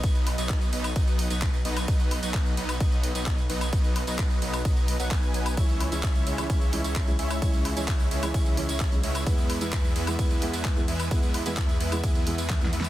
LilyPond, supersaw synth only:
\new Staff \with { instrumentName = "Supersaw synth" } { \time 4/4 \key b \major \tempo 4 = 130 <fis b dis' b' dis''>8. <fis b dis' b' dis''>8. <fis b dis' b' dis''>8 <fis b dis' b' dis''>8. <fis b dis' b' dis''>8 r16 <fis b dis' b' dis''>8 | <fis b dis' b' dis''>8. <fis b dis' b' dis''>8. <fis b dis' b' dis''>8 <fis b dis' b' dis''>8. <fis b dis' b' dis''>8 r16 <fis b dis' b' dis''>8 | <fis b dis' b' dis''>8. <fis b dis' b' dis''>8. <fis b dis' b' dis''>8 <fis b dis' b' dis''>8. <fis b dis' b' fis''>16 <fis b dis' b' gis''>4 | <gis cis' e' cis'' e''>8. <gis cis' e' cis'' e''>8. <gis cis' e' cis'' e''>8 <gis cis' e' cis'' e''>8. <gis cis' e' cis'' e''>8 r16 <gis cis' e' cis'' e''>8 |
<gis cis' e' cis'' e''>8. <gis cis' e' cis'' e''>8. <gis cis' e' cis'' e''>8 <gis cis' e' cis'' e''>8. <gis cis' e' cis'' e''>8 r16 <gis cis' e' cis'' e''>8 | <gis b e' b' e''>8. <gis b e' b' e''>8. <gis b e' b' e''>8 <gis b e' b' e''>8. <gis b e' b' e''>8 r16 <gis b e' b' e''>8 | <gis b e' b' e''>8. <gis b e' b' e''>8. <gis b e' b' e''>8 <gis b e' b' e''>8. <gis b e' b' e''>8 r16 <gis b e' b' e''>8 | }